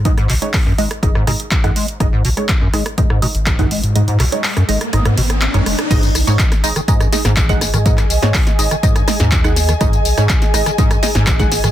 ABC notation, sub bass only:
X:1
M:4/4
L:1/16
Q:1/4=123
K:G#m
V:1 name="Sub bass" clef=bass
G,, z B,,, z3 G,,, z G,,, z G,, z2 G,,, z2 | G,,, z B,,, z3 G,,, z4 G,,,3 z G,,- | G,, z B,,, z3 G,,, z G,,, z G,,,2 z G,,, F,,, z | G,,, z B,,, z3 G,,, z4 G,,,3 z G,,- |
G,, z B,,, z3 G,,, z4 D,,4 z | G,,, z B,,, z3 G,,, z4 G,,,3 z G,, |]